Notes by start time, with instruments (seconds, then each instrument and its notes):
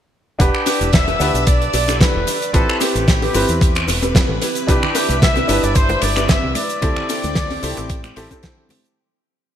0.39 fingered electric bass E1, grand piano D4 G4 B4 F#5, trumpet section G4, string machine D5 E6, kick, closed hi-hat, ride, shaker
0.55 finger snap
0.66 clean electric guitar D4 E4 G4 B4, open hi-hat, ride, shaker
0.81 fingered electric bass E1, closed hi-hat, shaker
0.93 trumpet section E5, kick, snare, closed hi-hat, ride, shaker
1.07 clean electric guitar D4 E4 G4 B4, closed hi-hat
1.19 fingered electric bass D2, grand piano D4 G4 B4 F#5, open hi-hat, ride, shaker
1.34 fingered electric bass B1, closed hi-hat, shaker
1.47 trumpet section D5, kick, closed hi-hat, ride, shaker
1.61 muted clean electric guitar stroke, closed hi-hat
1.73 fingered electric bass B1, muted clean electric guitar stroke, open hi-hat, ride, shaker
1.88 clean electric guitar D4 E4 G4 A4, finger snap, closed hi-hat, shaker
2.01 trumpet section B4, kick, snare, closed hi-hat, ride, shaker
2.15 fingered electric bass E1
2.27 open hi-hat, ride, shaker
2.42 closed hi-hat, shaker
2.53 fingered electric bass A1, grand piano C4 E4 G4 B4, trumpet section A4, string machine B4, kick, closed hi-hat, ride, shaker
2.69 finger snap
2.81 clean electric guitar C4 G4 A4 B4, trumpet section G4, open hi-hat, ride, shaker
2.95 fingered electric bass A1, closed hi-hat, shaker
3.08 kick, snare, closed hi-hat, ride, shaker
3.22 clean electric guitar C4 G4 A4 B4, open hi-hat
3.34 fingered electric bass G1, grand piano C4 E4 G4 B4, open hi-hat, ride, shaker
3.48 fingered electric bass E2, closed hi-hat, shaker
3.61 kick, closed hi-hat, ride, shaker
3.75 finger snap, muted clean electric guitar stroke, closed hi-hat
3.88 fingered electric bass E1, muted clean electric guitar stroke, open hi-hat, ride, shaker
4.02 clean electric guitar C4 G4 A4 B4, closed hi-hat, shaker
4.15 kick, snare, closed hi-hat, ride, shaker
4.29 fingered electric bass A1
4.41 clean electric guitar C4 E4 G4 B4, string machine E5, open hi-hat, ride, shaker
4.55 closed hi-hat, shaker
4.67 fingered electric bass C2, grand piano D4 E4 G4 B4, trumpet section G4, kick, closed hi-hat, ride, shaker
4.83 finger snap, low conga
4.95 clean electric guitar C4 E4 G4 B4, open hi-hat, ride, high bongo, shaker
5.09 fingered electric bass C2, closed hi-hat, high conga, shaker
5.22 trumpet section E5, kick, snare, closed hi-hat, ride, shaker
5.36 clean electric guitar C4 E4 G4 B4, closed hi-hat, high bongo
5.47 fingered electric bass G1, grand piano D4 E4 G4 B4, open hi-hat, ride, shaker
5.63 fingered electric bass G1, trumpet section D5, closed hi-hat, shaker
5.75 trumpet section C5, kick, closed hi-hat, ride, shaker
5.89 muted clean electric guitar stroke, closed hi-hat, high bongo, high conga, low conga
6.02 fingered electric bass G1, trumpet section D5, muted clean electric guitar stroke, open hi-hat, ride, shaker
6.16 clean electric guitar C4 E4 G4 B4, finger snap, closed hi-hat, shaker
6.29 trumpet section E5, kick, snare, closed hi-hat, ride, high bongo, shaker
6.43 fingered electric bass C2
6.55 trumpet section D5, open hi-hat, ride, high conga, shaker
6.70 closed hi-hat, shaker
6.81 fingered electric bass D2, grand piano C4 E4 G4 A4, string machine C4 G5 D6, kick, closed hi-hat, ride, high bongo, shaker
6.96 finger snap, low conga
7.09 clean electric guitar C4 D4 G4 A4, open hi-hat, ride, shaker
7.24 fingered electric bass D2, closed hi-hat, high bongo, high conga, shaker
7.35 kick, snare, closed hi-hat, ride, low conga, shaker
7.50 clean electric guitar C4 D4 G4 A4, open hi-hat
7.62 fingered electric bass C2, grand piano C4 E4 G4 A4, open hi-hat, ride, shaker
7.77 fingered electric bass A1, closed hi-hat, high bongo, shaker
7.89 kick, closed hi-hat, ride, shaker
8.04 finger snap, muted clean electric guitar stroke, closed hi-hat, high conga
8.16 fingered electric bass A1, grand piano C4 E4 G4 A4, muted clean electric guitar stroke, open hi-hat, ride, high bongo, shaker
8.30 grand piano C4 E4 G4 A4, clean electric guitar C4 D4 G4 C5, kick, closed hi-hat, shaker
8.43 kick, snare, closed hi-hat, ride, shaker
8.69 open hi-hat, ride, high bongo, high conga, low conga, shaker
8.84 closed hi-hat, shaker